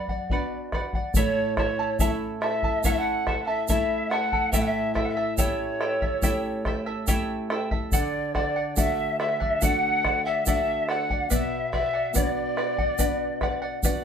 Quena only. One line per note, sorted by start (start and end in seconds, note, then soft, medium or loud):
1.15 1.54 C#5 medium
1.58 1.97 C#5 medium
1.99 2.09 E5 medium
2.42 2.81 E5 medium
2.83 2.91 F#5 medium
2.90 3.00 E5 medium
2.98 3.43 F#5 medium
3.43 3.67 E5 medium
3.43 3.47 F#5 medium
3.67 4.12 E5 medium
4.10 4.53 F#5 medium
4.53 4.63 E5 medium
4.62 4.69 F#5 medium
4.68 4.95 E5 medium
4.95 5.07 E5 medium
5.06 5.13 F#5 medium
5.11 5.39 E5 medium
5.40 7.04 C#5 medium
7.93 8.32 D5 medium
8.38 8.75 D5 medium
8.78 9.17 E5 medium
9.20 9.64 E5 medium
9.62 10.24 F#5 medium
10.25 10.44 E5 medium
10.47 10.90 E5 medium
10.88 11.30 F#5 medium
11.32 11.71 E5 medium
11.75 12.13 E5 medium
12.18 13.81 D5 medium